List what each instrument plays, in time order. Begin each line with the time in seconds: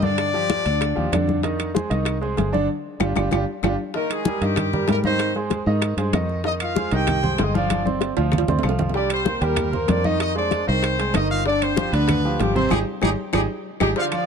Already playing: fingered electric bass G2
0.02 grand piano D3 D4 D5, horn section D4 D5, high bongo, high conga
0.18 high bongo, high conga, high timbale, claves
0.34 grand piano F3 F4 G4, high bongo, high conga
0.50 high bongo, high conga, high timbale, low timbale
0.65 fingered electric bass D2, grand piano D3 D4 D5, high conga, high timbale
0.81 high bongo, high conga, high timbale, claves
0.95 fingered electric bass D#2, grand piano F3 F4 G4, high bongo, high conga
1.12 fingered electric bass F2, grand piano D3 D4 D5, high bongo, low bongo, high conga, high timbale, low timbale, claves
1.27 high bongo, high conga
1.43 grand piano D#3 D#4 D#5, high bongo, high conga, high timbale
1.59 high bongo, high conga, high timbale, claves
1.74 grand piano G#3 G#4 C5, high bongo, high conga, low timbale
1.90 fingered electric bass C2, grand piano D#3 D#4 D#5, high conga, high timbale
2.05 high bongo, high conga, high timbale, claves
2.21 grand piano G#3 G#4 C5, high bongo, high conga
2.37 fingered electric bass G1, grand piano G#3 G#4 C5, high bongo, low bongo, high conga, high timbale, low timbale
2.52 grand piano D3 D4 D5, high bongo, high conga
3.00 fingered electric bass G1, grand piano D4 F4 G4, low bongo, high conga, high timbale, claves
3.16 fingered electric bass G1, grand piano D4 F4 G4, low bongo, high conga, high timbale, claves
3.31 fingered electric bass G1, grand piano D4 F4 G4, low bongo, high conga, high timbale, claves
3.63 fingered electric bass G1, grand piano D4 F4 G4, low bongo, high conga, high timbale, claves
3.94 grand piano D#3 D#4 D#5, horn section A#3 A#4, high bongo, high conga
4.10 horn section G#3 G#4, high conga, high timbale, claves
4.25 grand piano G3 G4 A#4, high bongo, high conga, low timbale
4.41 fingered electric bass G2, grand piano D#3 D#4 D#5, horn section G3 G4, high conga, high timbale
4.56 high bongo, high conga, low conga, high timbale, claves
4.73 grand piano G3 G4 A#4, high conga, low conga
4.88 fingered electric bass G#2, grand piano G3 G4 A#4, horn section A#3 A#4, high bongo, low bongo, high conga, high timbale, low timbale
5.04 grand piano D#3 D#4 D#5, horn section C4 C5, high conga
5.19 high bongo, high conga, high timbale, claves
5.34 grand piano G#3 G#4 C5, high bongo, high conga
5.50 high bongo, high conga, high timbale, low timbale
5.66 fingered electric bass G#2, grand piano D#3 D#4 D#5
5.82 high bongo, high conga, high timbale, claves
5.97 fingered electric bass G2, grand piano G#3 G#4 C5, high bongo, high conga, high timbale
6.13 fingered electric bass F2, grand piano D#3 D#4 D#5, high bongo, low bongo, high conga, high timbale, low timbale, claves
6.29 high bongo, high conga
6.44 grand piano D#3 D#4 D#5, horn section D#4 D#5, high bongo, high conga
6.60 horn section F4 F5, high conga, high timbale, claves
6.76 grand piano G#3 G#4 C5, high bongo, high conga, low timbale
6.91 fingered electric bass C2, grand piano D#3 D#4 D#5, horn section G4 G5, high conga, high timbale
7.07 high bongo, high conga, low conga, high timbale, claves
7.23 grand piano G#3 G#4 C5, high conga, low conga
7.38 fingered electric bass G1, grand piano G#3 G#4 C5, horn section D#4 D#5, high bongo, low bongo, high conga, high timbale, low timbale
7.54 grand piano F3 F4 F5, horn section D4 D5, high conga
7.70 high bongo, high conga, high timbale, claves
7.85 grand piano C4 C5 D5, high bongo, high conga
8.01 high bongo, high timbale, low timbale
8.17 fingered electric bass D2, grand piano F3 F4 F5, high timbale
8.32 high bongo, low conga, claves
8.38 high timbale
8.48 fingered electric bass D2, grand piano C4 C5 D5, high bongo, low conga, low timbale
8.59 low timbale
8.63 fingered electric bass C2, grand piano F3 F4 F5, high bongo, low bongo, claves
8.69 low timbale
8.79 high bongo, low conga, low timbale
8.89 low timbale
8.94 grand piano G3 G4 G5, horn section D4 D5, high bongo, high conga
9.10 horn section C4 C5, high conga, high timbale, claves
9.25 grand piano A#3 A#4 C5, high bongo, high conga, low timbale
9.41 fingered electric bass D#2, grand piano G3 G4 G5, horn section A#3 A#4, high conga, high timbale
9.56 high bongo, high conga, low conga, high timbale, claves
9.72 grand piano A#3 A#4 C5, high conga, low conga
9.88 fingered electric bass F2, grand piano A#3 A#4 C5, horn section D4 D5, high bongo, low bongo, high conga, high timbale, low timbale
10.04 grand piano D#3 D#4 D#5, horn section D#4 D#5, high conga
10.20 horn section D#4 D#5, high bongo, high timbale, claves
10.35 grand piano G#3 G#4 C5, horn section D4 D5, high bongo, high conga
10.51 high bongo, high conga, high timbale, low timbale
10.67 fingered electric bass C2, grand piano D#3 D#4 D#5, horn section C4 C5
10.83 high bongo, high conga, high timbale, claves
10.99 grand piano G#3 G#4 C5, high bongo, high conga, high timbale
11.14 fingered electric bass G1, grand piano D#3 D#4 D#5, horn section D#4 D#5, high bongo, low bongo, high conga, high timbale, low timbale, claves
11.30 horn section F4 F5, high bongo, high conga
11.46 grand piano D3 D4 D5, horn section D4 D5, high bongo, high conga
11.62 horn section C4 C5, high conga, high timbale, claves
11.76 grand piano F3 F4 G4, high bongo, high conga, low timbale
11.92 fingered electric bass D2, grand piano D3 D4 D5, horn section B3 B4, high conga, high timbale
12.08 high bongo, high conga, low conga, high timbale, claves
12.25 grand piano F3 F4 G4, high conga
12.40 fingered electric bass G#1, grand piano F3 F4 G4, horn section G3 G4, high bongo, low bongo, high conga, high timbale, low timbale
12.55 grand piano C3 C4 C5, horn section C4 C5, high conga
12.70 fingered electric bass G#1, horn section D#4 G4 G#4, grand piano D#4 G4 G#4, low bongo, high conga, high timbale, claves
13.02 fingered electric bass G#1, grand piano D#4 G4 G#4, horn section D#4 G4 G#4, low bongo, high conga, high timbale, claves
13.33 fingered electric bass G#1, horn section D#4 G4 G#4, grand piano D#4 G4 G#4, low bongo, high conga, high timbale, claves
13.80 fingered electric bass G#1, grand piano D#4 G4 G#4, horn section D#4 G4 G#4, low bongo, high conga, high timbale, claves
13.96 grand piano D3 D4 D5, saxophone section F3, horn section F4 F5, high bongo, high conga
14.11 grand piano F3 F4 F5, horn section D4 D5, high conga, high timbale, claves